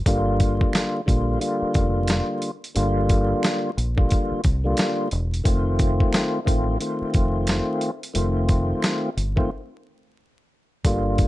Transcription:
0.06 0.62 G1 loud
0.06 1.01 D3 loud
0.06 1.01 G3 medium
0.06 1.01 A#3 medium
0.06 1.02 F4 loud
0.06 kick loud
0.06 closed hi-hat loud
0.40 kick loud
0.40 closed hi-hat medium
0.61 kick loud
0.73 finger snap medium
0.73 snare loud
0.73 closed hi-hat loud
1.06 1.36 A#1 loud
1.06 1.38 D3 medium
1.06 1.39 G3 medium
1.06 1.39 A#3 medium
1.06 1.39 F4 loud
1.06 kick medium
1.06 closed hi-hat medium
1.39 2.50 D3 medium
1.39 2.51 G3 medium
1.39 2.51 A#3 medium
1.39 2.51 F4 medium
1.39 closed hi-hat medium
1.62 muted fingered electric bass stroke soft
1.74 2.20 F1 medium
1.74 kick loud
1.74 closed hi-hat medium
2.07 finger snap medium
2.07 snare loud
2.07 closed hi-hat loud
2.42 closed hi-hat medium
2.64 closed hi-hat medium
2.75 3.32 G1 loud
2.75 3.70 D3 loud
2.75 3.70 G3 medium
2.75 3.71 A#3 medium
2.75 3.71 F4 loud
2.75 closed hi-hat loud
3.09 kick loud
3.09 closed hi-hat medium
3.43 finger snap medium
3.43 snare loud
3.43 closed hi-hat loud
3.77 4.05 A#1 loud
3.77 closed hi-hat medium
3.96 4.40 D3 medium
3.96 4.41 G3 medium
3.96 4.41 A#3 medium
3.96 4.42 F4 loud
3.96 kick loud
4.11 kick loud
4.11 closed hi-hat medium
4.32 muted fingered electric bass stroke soft
4.44 4.73 C2 loud
4.44 kick loud
4.44 closed hi-hat medium
4.64 5.08 D3 medium
4.64 5.09 G3 medium
4.64 5.09 A#3 medium
4.64 5.09 F4 loud
4.77 finger snap medium
4.77 snare loud
4.77 closed hi-hat loud
5.11 5.40 E1 loud
5.11 closed hi-hat medium
5.34 closed hi-hat medium
5.44 6.02 F1 loud
5.44 6.39 D#3 medium
5.44 6.40 A3 loud
5.44 6.40 C4 medium
5.44 6.40 F4 loud
5.44 kick loud
5.44 closed hi-hat loud
5.79 kick loud
5.79 closed hi-hat medium
6.00 kick loud
6.13 finger snap medium
6.13 snare loud
6.13 closed hi-hat loud
6.45 6.75 A1 loud
6.45 6.77 D#3 loud
6.45 6.78 A3 medium
6.45 6.78 C4 medium
6.45 6.78 F4 loud
6.45 kick medium
6.45 closed hi-hat medium
6.80 7.90 D#3 medium
6.80 7.91 A3 medium
6.80 7.91 C4 medium
6.80 7.91 F4 loud
6.80 closed hi-hat medium
7.01 muted fingered electric bass stroke soft
7.14 7.60 F1 medium
7.14 kick loud
7.14 closed hi-hat medium
7.47 finger snap medium
7.47 snare loud
7.47 closed hi-hat loud
7.81 closed hi-hat medium
8.03 closed hi-hat medium
8.14 8.72 F1 loud
8.14 9.09 D#3 loud
8.14 9.10 A3 medium
8.14 9.10 C4 medium
8.14 9.10 F4 loud
8.14 closed hi-hat loud
8.49 kick loud
8.49 closed hi-hat medium
8.82 finger snap medium
8.82 snare loud
8.82 closed hi-hat loud
9.17 9.45 G1 medium
9.17 closed hi-hat medium
9.36 9.50 D#3 medium
9.36 9.50 A3 medium
9.36 9.50 C4 medium
9.36 9.51 F4 loud
9.36 kick medium
10.84 11.28 G1 loud
10.84 11.28 D3 medium
10.84 11.28 G3 medium
10.84 11.28 A#3 medium
10.84 11.28 F4 loud
10.84 kick loud
10.84 closed hi-hat loud
11.18 kick loud
11.18 closed hi-hat medium

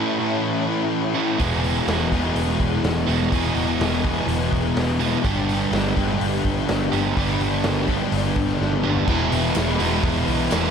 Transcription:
0.00 1.13 A2 medium
0.00 1.16 E3 medium
0.00 1.14 A3 medium
0.00 1.14 C#4 medium
0.00 1.14 E4 medium
0.19 1.38 A2 medium
0.19 1.39 E3 medium
0.19 1.38 A3 medium
0.19 1.38 C#4 medium
0.19 1.40 E4 medium
1.14 1.38 A2 medium
1.14 1.38 E3 medium
1.14 1.38 A3 medium
1.14 1.38 C#4 medium
1.14 1.40 E4 medium
1.38 1.79 E1 medium
1.38 3.06 E2 medium
1.38 3.06 B2 medium
1.38 3.06 E3 medium
1.38 3.06 G#3 medium
1.38 3.07 B3 medium
1.38 3.05 E4 medium
1.38 2.11 G#4 medium
1.38 kick loud
1.38 open hi-hat medium
1.64 open hi-hat medium
1.87 2.07 E1 medium
1.87 snare loud
1.87 open hi-hat medium
2.12 2.31 E1 medium
2.12 3.30 E2 medium
2.12 3.31 B2 medium
2.12 3.31 E3 medium
2.12 3.31 G#3 medium
2.12 3.33 B3 medium
2.12 3.31 G#4 medium
2.12 kick medium
2.12 open hi-hat soft
2.35 2.55 E1 medium
2.35 open hi-hat medium
2.60 2.80 E1 medium
2.60 kick medium
2.60 open hi-hat soft
2.74 snare soft
2.83 3.03 E1 medium
2.83 snare loud
2.83 open hi-hat medium
3.06 3.27 E1 medium
3.06 3.29 E2 medium
3.06 3.31 B2 medium
3.06 3.31 E3 medium
3.06 3.31 G#3 medium
3.06 3.33 B3 medium
3.06 3.30 E4 medium
3.06 open hi-hat soft
3.22 snare soft
3.31 3.52 E1 medium
3.31 4.98 E2 medium
3.31 4.99 B2 medium
3.31 4.99 E3 medium
3.31 4.99 G#3 medium
3.31 5.00 B3 medium
3.31 4.98 E4 medium
3.31 4.02 G#4 medium
3.31 kick loud
3.31 open hi-hat medium
3.55 3.75 E1 medium
3.55 open hi-hat soft
3.79 4.19 E1 medium
3.79 snare loud
3.79 open hi-hat medium
4.04 5.23 E2 medium
4.04 5.23 B2 medium
4.04 5.23 E3 medium
4.04 5.23 G#3 medium
4.04 5.26 B3 medium
4.04 5.23 G#4 medium
4.04 kick medium
4.04 open hi-hat soft
4.27 4.47 E1 medium
4.27 open hi-hat medium
4.53 4.72 E1 medium
4.53 kick medium
4.53 open hi-hat soft
4.75 5.15 E1 medium
4.75 snare loud
4.75 open hi-hat medium
4.99 5.22 E2 medium
4.99 5.22 B2 medium
4.99 5.23 E3 medium
4.99 5.23 G#3 medium
4.99 5.24 B3 medium
4.99 5.22 E4 medium
4.99 open hi-hat medium
5.22 5.64 G1 medium
5.22 6.90 G2 medium
5.22 6.90 D3 medium
5.22 6.90 G3 loud
5.22 6.93 B3 medium
5.22 6.91 D4 medium
5.22 6.91 G4 medium
5.22 kick loud
5.22 open hi-hat medium
5.49 open hi-hat soft
5.72 5.92 G1 loud
5.72 snare loud
5.72 open hi-hat medium
5.95 6.17 G1 medium
5.95 7.15 G2 medium
5.95 7.15 D3 medium
5.95 7.15 G3 medium
5.95 7.17 B3 medium
5.95 7.15 D4 medium
5.95 7.14 G4 medium
5.95 kick medium
5.95 open hi-hat medium
6.21 6.40 G1 medium
6.21 open hi-hat medium
6.45 6.64 G1 medium
6.45 kick medium
6.45 open hi-hat soft
6.68 6.88 G1 medium
6.68 snare loud
6.68 open hi-hat medium
6.92 7.12 G1 medium
6.92 7.16 G2 medium
6.92 7.16 D3 medium
6.92 7.15 G3 medium
6.92 7.18 B3 medium
6.92 7.15 D4 medium
6.92 7.15 G4 medium
6.92 open hi-hat medium
7.17 7.36 G1 medium
7.17 8.83 G2 medium
7.17 8.83 D3 medium
7.17 8.83 G3 loud
7.17 8.83 B3 medium
7.17 8.83 D4 medium
7.17 8.82 G4 loud
7.17 kick medium
7.17 open hi-hat medium
7.40 7.60 G1 medium
7.40 open hi-hat soft
7.63 8.03 G1 medium
7.63 snare loud
7.63 open hi-hat medium
7.88 9.07 G2 medium
7.88 9.07 D3 medium
7.88 9.07 G3 medium
7.88 9.06 B3 medium
7.88 9.06 D4 medium
7.88 9.06 G4 medium
7.88 kick medium
7.88 open hi-hat soft
8.12 8.32 G1 medium
8.12 open hi-hat medium
8.36 8.56 G1 medium
8.36 kick medium
8.36 open hi-hat soft
8.49 snare soft
8.59 8.99 G1 medium
8.59 snare medium
8.72 high tom medium
8.83 9.07 G2 medium
8.83 9.07 D3 medium
8.83 9.07 G3 medium
8.83 9.06 B3 medium
8.83 9.06 D4 medium
8.83 9.06 G4 medium
8.83 mid tom medium
8.96 floor tom medium
9.07 9.27 E1 medium
9.07 9.81 E2 loud
9.07 9.78 B2 medium
9.07 9.81 E3 loud
9.07 9.80 G#3 loud
9.07 9.79 B3 medium
9.07 9.78 E4 loud
9.07 kick loud
9.07 crash loud
9.32 9.51 E1 medium
9.32 open hi-hat medium
9.55 9.76 E1 loud
9.55 snare loud
9.55 open hi-hat medium
9.55 tambourine loud
9.78 10.00 E1 medium
9.78 10.49 E2 medium
9.78 10.50 B2 medium
9.78 10.52 E3 medium
9.78 10.52 G#3 medium
9.78 10.50 B3 medium
9.78 10.53 E4 medium
9.78 open hi-hat medium
9.92 snare soft
10.03 10.23 E1 medium
10.03 kick loud
10.03 open hi-hat medium
10.16 snare soft
10.28 10.47 B1 medium
10.28 open hi-hat medium
10.50 10.71 E1 medium
10.50 10.71 E2 medium
10.50 10.71 B2 medium
10.50 10.71 E3 medium
10.50 10.71 G#3 medium
10.50 10.71 B3 medium
10.50 10.71 E4 medium
10.50 snare loud
10.50 open hi-hat medium
10.50 tambourine loud

